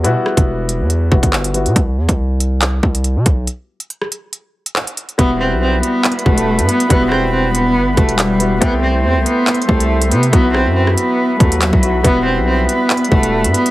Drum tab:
HH |x--------x--------x-----x--------x-----x--x--x--|x--------x--------x-----x--------x--x-----x-----|x--------x--x-----x-----x--------x-----x--x--x--|x-----------------x-----x-x-x----x-----x--x--x--|
CP |------------------------------------x-----------|------------------------x-----------------------|------------------------------------x-----------|------------------------x-----------------------|
SD |------r-----------------------------------------|------------------------------------------------|---------------r--------------------------------|------------------------------------------------|
BD |---------o--------------------o--o--------------|o--------o--------------------o-----------o-----|------------------------------------------------|o-----------------------------o-----------------|

HH |x-----------------x-----------x--x--x-----x-----|x-----------------x-----x-x-x----x-----x--x--x--|x-----------------x-----------x--x--x-----x-----|x-----------------x-----x-x-x----x-----x--x--x--|
CP |------------------------------------x-----------|------------------------x-----------------------|------------------------------------x-----------|------------------------x-----------------------|
SD |------r-----------------------------------------|------------------------------------------------|------r--------r--------------------------------|------------------------------------------------|
BD |o-----------------------------o-----------------|o-----------------------------o-----------------|o-----------------------------o--------o--------|o-----------------------------o-----------------|